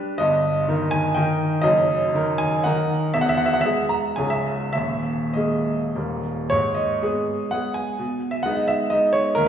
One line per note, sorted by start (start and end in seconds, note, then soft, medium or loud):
0.00 0.17 G3 medium
0.00 0.17 D4 medium
0.00 0.17 G4 medium
0.00 0.20 B4 loud
0.18 0.67 G1 medium
0.18 0.67 G2 medium
0.18 0.92 D#5 loud
0.68 1.14 D#3 medium
0.68 1.14 D#4 medium
0.68 1.14 A#4 medium
0.91 1.17 G#5 loud
1.15 1.60 D#3 medium
1.15 1.60 D#4 medium
1.15 1.60 A#4 medium
1.15 1.63 G5 loud
1.62 2.13 F#1 medium
1.62 2.13 F#2 medium
1.62 2.40 D#5 loud
2.15 2.62 D#3 medium
2.15 2.62 D#4 medium
2.15 2.62 A#4 medium
2.38 2.65 G#5 loud
2.64 3.10 D#3 medium
2.64 3.10 D#4 medium
2.64 3.10 A#4 medium
2.64 3.13 F#5 medium
3.14 3.63 E1 medium
3.14 3.63 E2 medium
3.14 3.21 E5 loud
3.21 3.29 F#5 loud
3.29 3.37 E5 loud
3.37 3.46 F#5 loud
3.46 3.54 E5 loud
3.54 3.63 F#5 loud
3.61 4.15 G#3 medium
3.61 4.15 B3 medium
3.61 3.90 E5 loud
3.65 4.15 G#4 medium
3.89 4.18 A#5 loud
4.16 4.73 C#1 medium
4.16 4.74 C#2 medium
4.16 4.71 G#3 soft
4.16 4.72 C#4 soft
4.16 4.72 G#4 soft
4.16 4.31 G#5 medium
4.30 4.71 E5 medium
4.73 5.34 D#1 medium
4.73 5.34 D#2 medium
4.73 5.35 E5 loud
5.33 5.92 G#3 medium
5.33 5.92 A#3 soft
5.33 5.93 G#4 medium
5.33 5.95 D#5 medium
5.95 6.50 D#1 medium
5.95 6.50 D#2 medium
5.95 6.47 G3 soft
5.95 6.48 A#3 soft
5.95 6.48 A#4 soft
6.50 7.01 G#2 medium
6.50 6.76 C#5 loud
6.75 7.52 D#5 medium
7.02 7.49 G#3 medium
7.02 7.49 B3 medium
7.02 7.49 G#4 medium
7.51 7.95 G#3 soft
7.51 7.95 B3 soft
7.51 7.96 G#4 soft
7.51 7.76 F#5 loud
7.74 8.32 G#5 medium
7.99 8.44 B2 medium
8.31 8.44 E5 medium
8.43 8.88 G#3 medium
8.43 8.88 B3 medium
8.43 8.88 D#4 medium
8.43 8.56 F#5 loud
8.55 8.68 D#5 medium
8.68 8.91 E5 loud
8.90 9.33 G#3 soft
8.90 9.33 B3 soft
8.90 9.34 D#4 medium
8.90 9.13 D#5 loud
9.13 9.36 C#5 medium
9.35 9.48 D#2 medium
9.35 9.47 A#4 loud